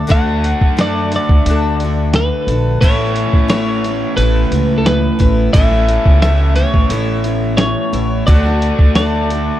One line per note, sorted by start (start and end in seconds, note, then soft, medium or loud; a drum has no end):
0.00 0.11 D5 medium
0.07 0.51 D2 medium
0.07 0.75 D3 medium
0.07 2.82 A3 medium
0.07 0.77 D4 medium
0.07 0.77 F#4 medium
0.07 0.80 A4 medium
0.07 kick loud
0.07 closed hi-hat medium
0.11 0.81 F#5 medium
0.44 closed hi-hat medium
0.61 1.16 F#2 medium
0.61 kick medium
0.77 1.11 D3 medium
0.77 1.12 D4 medium
0.77 1.12 F#4 medium
0.77 1.12 A4 medium
0.77 snare loud
0.77 closed hi-hat medium
0.81 1.11 D5 medium
1.12 1.47 F#4 soft
1.12 1.47 A4 soft
1.12 closed hi-hat medium
1.16 1.47 D4 soft
1.16 2.15 D5 medium
1.29 1.43 D2 medium
1.29 kick medium
1.46 2.29 D2 medium
1.46 1.81 D3 medium
1.46 1.81 D4 medium
1.46 1.82 F#4 medium
1.46 closed hi-hat medium
1.51 1.81 A4 medium
1.80 2.49 A4 soft
1.80 closed hi-hat medium
1.84 2.50 D4 soft
1.84 2.49 F#4 medium
2.13 2.81 B4 medium
2.13 snare loud
2.13 closed hi-hat medium
2.47 2.75 A#1 medium
2.47 2.83 F#4 soft
2.47 2.83 A4 medium
2.47 closed hi-hat medium
2.52 2.84 D4 soft
2.81 3.24 A1 loud
2.81 3.50 A2 medium
2.81 5.52 E3 medium
2.81 3.48 A3 medium
2.81 3.50 B3 medium
2.81 3.49 C#4 medium
2.81 3.50 E4 medium
2.81 3.49 C#5 medium
2.81 kick loud
2.81 closed hi-hat medium
3.16 closed hi-hat medium
3.33 4.03 A1 medium
3.33 kick medium
3.48 3.83 A3 medium
3.48 3.85 B3 medium
3.48 3.84 C#4 medium
3.48 3.84 E4 medium
3.48 4.14 C#5 medium
3.48 snare loud
3.48 closed hi-hat medium
3.84 4.20 B3 soft
3.84 4.19 E4 medium
3.84 closed hi-hat medium
3.89 4.19 C#4 soft
4.17 4.45 A1 medium
4.17 4.52 A3 medium
4.17 4.53 C#4 soft
4.17 4.80 B4 medium
4.17 closed hi-hat medium
4.21 4.53 B3 medium
4.21 4.52 E4 medium
4.51 5.07 C#2 medium
4.51 5.20 B3 medium
4.51 5.18 E4 soft
4.51 closed hi-hat medium
4.56 5.21 C#4 soft
4.78 4.86 A4 medium
4.86 5.53 B4 medium
4.86 snare loud
4.86 closed hi-hat medium
5.19 5.48 A1 medium
5.19 5.54 B3 soft
5.19 5.55 C#4 soft
5.19 5.54 E4 medium
5.19 kick medium
5.19 closed hi-hat medium
5.53 5.96 A1 medium
5.53 6.22 A2 medium
5.53 8.24 E3 medium
5.53 6.22 A3 medium
5.53 6.23 B3 medium
5.53 6.22 C#4 medium
5.53 6.21 E5 medium
5.53 kick loud
5.53 closed hi-hat medium
5.57 6.24 E4 medium
5.71 snare soft
5.88 closed hi-hat medium
6.06 6.61 C#2 medium
6.06 kick medium
6.22 6.57 A3 medium
6.22 6.57 B3 medium
6.22 6.57 C#4 medium
6.22 6.55 E4 medium
6.22 6.54 E5 medium
6.22 snare loud
6.22 closed hi-hat medium
6.56 6.90 B3 soft
6.56 6.90 C#4 soft
6.56 6.91 E4 medium
6.56 7.56 C#5 medium
6.56 closed hi-hat medium
6.74 6.87 A1 medium
6.74 kick medium
6.89 7.73 A1 medium
6.89 7.24 A3 soft
6.89 7.25 B3 medium
6.89 7.25 C#4 medium
6.89 closed hi-hat medium
6.93 7.24 E4 medium
7.24 7.93 B3 soft
7.24 7.92 E4 soft
7.24 closed hi-hat medium
7.29 7.94 C#4 soft
7.57 8.26 C#5 medium
7.57 snare loud
7.57 closed hi-hat medium
7.93 8.21 A1 medium
7.93 8.28 B3 soft
7.93 8.28 C#4 soft
7.93 8.27 E4 medium
7.93 closed hi-hat medium
8.27 8.69 D2 loud
8.27 8.94 D3 medium
8.27 9.60 A3 medium
8.27 8.95 D4 medium
8.27 8.96 F#4 medium
8.27 8.99 A4 medium
8.27 8.95 D5 medium
8.27 kick loud
8.27 closed hi-hat medium
8.47 snare soft
8.62 closed hi-hat medium
8.79 9.48 D2 medium
8.79 kick medium
8.95 9.29 D3 medium
8.95 9.30 D4 medium
8.95 9.31 F#4 medium
8.95 9.30 A4 medium
8.95 9.60 D5 medium
8.95 snare loud
8.95 closed hi-hat medium
9.30 9.60 D4 soft
9.30 9.60 F#4 soft
9.30 9.60 A4 soft
9.30 closed hi-hat medium